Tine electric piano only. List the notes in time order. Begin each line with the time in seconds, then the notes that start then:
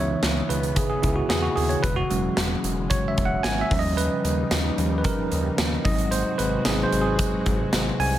Already playing: E3 B3 D#4 C#5 E5
0.49 B4
0.76 G#4
0.90 G#4
1.03 E4
1.16 F#4
1.29 G#4
1.42 F#4
1.56 G#4
1.69 C#5
1.83 B4
1.96 F#4
2.10 F#3 G#3 C#4
2.90 C#5
3.08 E5
3.25 F#5
3.43 G#5
3.61 E5
3.71 F3 G3 C#4
3.79 D#5
3.97 B4
4.78 F3 G3 C#4
4.98 B4
5.04 A#4
5.85 F#3 C4 D#4 D#5
6.11 C5
6.38 B4
6.65 F#3 C4 D#4 G#4
6.83 C5
7.01 G#4
8.00 G#5